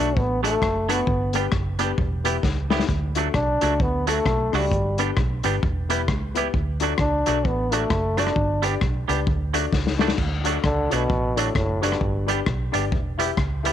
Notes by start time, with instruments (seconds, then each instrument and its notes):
Already playing: trombone D4
0.00 fingered electric bass B1, upright piano F#4 A4
0.17 fingered electric bass A1, trombone B3, upright piano F#4 A4, kick
0.43 clean electric guitar F#3 A3 D4 F#4, upright piano A3 D4 F#4 A4, trombone A3, closed hi-hat
0.62 fingered electric bass F#1, kick, cross-stick
0.88 clean electric guitar F#3 A3 D4 F#4, upright piano A3 D4 F#4 A4, trombone B3, cross-stick, closed hi-hat
1.07 fingered electric bass G1, kick
1.33 clean electric guitar G3 B3 D4 G4, upright piano B3 D4 G4 B4, closed hi-hat
1.52 fingered electric bass F#1, kick, cross-stick
1.79 clean electric guitar G3 B3 D4 G4, upright piano B3 D4 G4 B4, closed hi-hat
1.98 fingered electric bass E1, kick
2.24 clean electric guitar G3 B3 E4 G4, upright piano B3 E4 G4 B4, closed hi-hat
2.43 fingered electric bass C#2, kick, snare
2.70 clean electric guitar G3 B3 E4 G4, upright piano B3 E4 G4 B4, snare
2.79 snare
2.88 fingered electric bass D2, kick, hi-hat pedal
3.15 clean electric guitar F#3 A3 D4 F#4, upright piano A3 D4 F#4 A4, closed hi-hat
3.34 fingered electric bass B1, trombone D4, kick, cross-stick
3.61 fingered electric bass C#2, clean electric guitar F#3 A3 D4 F#4, upright piano A3 D4 F#4 A4, closed hi-hat
3.80 fingered electric bass D2, trombone B3, upright piano F#4 A4, kick
4.07 clean electric guitar F#3 A3 D4 F#4, upright piano A3 D4 F#4 A4, trombone A3, closed hi-hat
4.26 fingered electric bass B1, kick, cross-stick
4.52 fingered electric bass C#2, clean electric guitar F#3 A3 D4 F#4, upright piano A3 D4 F#4 A4, cross-stick, open hi-hat
4.56 trombone G3
4.72 fingered electric bass G1, kick, hi-hat pedal
4.98 clean electric guitar G3 B3 D4 G4, upright piano B3 D4 G4 B4, closed hi-hat
5.17 fingered electric bass B1, kick, cross-stick
5.43 fingered electric bass G1, clean electric guitar G3 B3 D4 G4, upright piano B3 D4 G4 B4, closed hi-hat
5.63 fingered electric bass E1, kick
5.89 clean electric guitar G3 B3 E4 G4, upright piano B3 E4 G4 B4, closed hi-hat
6.08 fingered electric bass C#2, kick, cross-stick
6.34 clean electric guitar G3 B3 E4 G4, upright piano B3 E4 G4 B4, closed hi-hat
6.54 fingered electric bass D2, kick
6.80 clean electric guitar F#3 A3 D4 F#4, upright piano D4 F#4 A4 D5, closed hi-hat
6.98 fingered electric bass C#2, trombone D4, kick, cross-stick
7.26 fingered electric bass B1, clean electric guitar F#3 A3 D4 F#4, upright piano D4 F#4 A4 D5, closed hi-hat
7.45 fingered electric bass A1, trombone B3, upright piano D5, kick
7.71 clean electric guitar F#3 A3 D4 F#4, trombone A3, upright piano D4 F#4 A4 D5, closed hi-hat
7.90 fingered electric bass F#1, kick, cross-stick
8.17 clean electric guitar F#3 A3 D4 F#4, upright piano D4 F#4 A4 D5, trombone D4, cross-stick, closed hi-hat
8.27 cross-stick
8.36 fingered electric bass G1, kick
8.62 clean electric guitar G3 B3 D4 G4, upright piano D4 G4 B4 D5, closed hi-hat
8.81 fingered electric bass B1, kick, cross-stick
9.08 fingered electric bass C#2, clean electric guitar G3 B3 D4 G4, upright piano D4 G4 B4 D5, closed hi-hat
9.27 fingered electric bass D2, kick
9.53 clean electric guitar F#3 A3 D4 F#4, upright piano D4 F#4 A4 D5, closed hi-hat
9.73 fingered electric bass C#2, kick, snare
9.87 snare
9.98 clean electric guitar F#3 A3 D4 F#4, upright piano D4 F#4 A4 D5, snare
10.08 snare
10.18 fingered electric bass D2, kick, crash
10.44 clean electric guitar F#3 A3 D4 F#4, upright piano D4 F#4 A4 D5, closed hi-hat
10.64 fingered electric bass C#2, trombone D3, kick, cross-stick
10.89 fingered electric bass B1, trombone B2, clean electric guitar F#3 A3 D4 F#4, upright piano D4 F#4 A4 D5, closed hi-hat
11.10 fingered electric bass A1, upright piano A4 D5, kick
11.36 trombone A2, clean electric guitar F#3 A3 D4 F#4, upright piano D4 F#4 A4 D5, closed hi-hat
11.55 fingered electric bass F#1, trombone A2, kick, cross-stick
11.81 trombone G2, clean electric guitar F#3 A3 D4 F#4, upright piano D4 F#4 A4 D5, closed hi-hat
11.92 cross-stick
12.01 fingered electric bass G1, kick
12.26 clean electric guitar G3 B3 D4 G4, upright piano D4 G4 B4 D5, closed hi-hat
12.46 fingered electric bass B1, kick, cross-stick
12.72 fingered electric bass G1, clean electric guitar G3 B3 D4 G4, upright piano D4 G4 B4 D5, closed hi-hat
12.91 fingered electric bass E1, upright piano B4 E5, kick
13.18 clean electric guitar G3 B3 E4 G4, upright piano E4 G4 B4 E5, closed hi-hat
13.37 fingered electric bass C#2, kick, cross-stick
13.63 clean electric guitar G3 B3 E4 G4, upright piano E4 G4 B4 E5, closed hi-hat